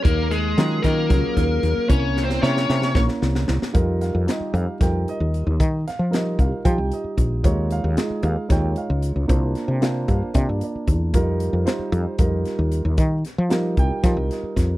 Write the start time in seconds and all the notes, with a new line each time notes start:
Already playing: F#3 C#4 F4 G#4
0.04 D#2 A#3 A#4, kick, closed hi-hat
0.31 G#3 G#4, snare, closed hi-hat
0.58 D#3 F#3 C#4 F4 A#4, snare, closed hi-hat
0.82 D#3 A#3 A#4, kick, snare, closed hi-hat
1.09 C#2 F#3 C#4 F4 G#4, kick, snare, closed hi-hat
1.37 D#2, kick, snare, closed hi-hat
1.63 D#2, snare, closed hi-hat
1.78 muted fretless electric bass stroke
1.88 C2 A#3 C#4 E4 C#5, kick, closed hi-hat
2.17 snare
2.24 C4 C5
2.30 snare
2.41 C3 A#3 C#4 E4 C#5, snare
2.57 snare
2.69 C3, snare
2.82 snare
2.94 A#1 A#3 C#4 E4 C#5, kick, snare
3.08 snare
3.22 C2, snare
3.35 snare
3.48 C2, snare
3.62 snare
3.73 F2 G3 D#4 F4 A#4, kick, closed hi-hat
4.01 F5, snare, closed hi-hat
4.15 F2
4.26 G3 D#4 F4 G4 D#5, snare, closed hi-hat
4.40 muted fretless electric bass stroke
4.54 F2 F5, closed hi-hat
4.79 F2 G3 D#4 F4 A#4 G5, kick, snare, closed hi-hat
5.08 D#5, closed hi-hat
5.20 D#2
5.34 closed hi-hat
5.47 D#2
5.60 D#3, kick, closed hi-hat
5.88 F5, snare, closed hi-hat
5.99 F3
6.11 G3 D#4 F4 A#4 D#5, snare, closed hi-hat
6.39 C2 F5, kick, closed hi-hat
6.52 muted fretless electric bass stroke
6.64 F3 G3 D#4 F4 G4 G5, kick, closed hi-hat
6.78 C2
6.92 D#5, closed hi-hat
7.04 muted fretless electric bass stroke
7.17 A#1, kick, closed hi-hat
7.44 D#2 G#3 D#4 F4 C#5, kick, closed hi-hat
7.71 F5, closed hi-hat
7.84 D#2
7.95 G#3 D#4 F4 G#4, snare, closed hi-hat
8.00 D#5
8.10 muted fretless electric bass stroke
8.23 D#2 F5, closed hi-hat
8.49 D#2 G#3 D#4 F4 C#5 G5, kick, snare, closed hi-hat
8.76 F5, closed hi-hat
8.90 C#2
9.02 closed hi-hat
9.16 C#2
9.28 C2 A#3 D4 F4 C5, kick, closed hi-hat
9.55 snare, closed hi-hat
9.68 C3
9.81 A#3 D4 F4 C5, snare, closed hi-hat
10.08 G2 F5, kick, closed hi-hat
10.22 muted fretless electric bass stroke
10.34 C3 A#3 D4 F4 D5, kick, closed hi-hat
10.49 G2
10.61 D5, closed hi-hat
10.75 muted fretless electric bass stroke
10.87 E2, kick, closed hi-hat
11.13 F2 G3 D#4 F4 A#4, kick, closed hi-hat
11.40 closed hi-hat
11.53 F2
11.65 G3 D#4 F4 C5, snare, closed hi-hat
11.79 muted fretless electric bass stroke
11.92 F2, closed hi-hat
12.18 F2 G3 D#4 F4 A#4, kick, closed hi-hat
12.45 snare, closed hi-hat
12.59 D#2
12.72 closed hi-hat
12.85 D#2
12.98 D#3, kick, closed hi-hat
13.25 snare, closed hi-hat
13.38 F3
13.49 G3 D#4 F4 A#4, snare, closed hi-hat
13.77 C2 G5, kick, closed hi-hat
13.91 muted fretless electric bass stroke
14.03 F3 G3 D#4 F4 A#4, kick, snare, closed hi-hat
14.17 C2
14.31 D#5, snare, closed hi-hat
14.43 muted fretless electric bass stroke
14.56 F2, kick, snare, closed hi-hat